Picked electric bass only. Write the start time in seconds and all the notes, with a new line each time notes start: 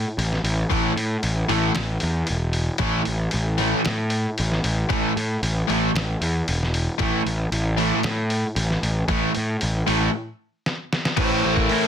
0.18 A1
0.44 A1
0.71 A1
0.96 A2
1.23 A1
1.50 A1
1.78 A1
2.03 E2
2.30 E1
2.80 A1
3.07 A1
3.34 A1
3.87 A2
4.39 A1
4.64 A1
4.91 A1
5.17 A2
5.42 A1
5.70 A1
5.95 A1
6.21 E2
6.48 E1
7.00 A1
7.26 A1
7.52 A1
8.04 A2
8.56 A1
8.83 A1
9.08 A1
9.37 A2
9.63 A1
9.88 A1
11.17 A1
11.45 A1
11.71 A2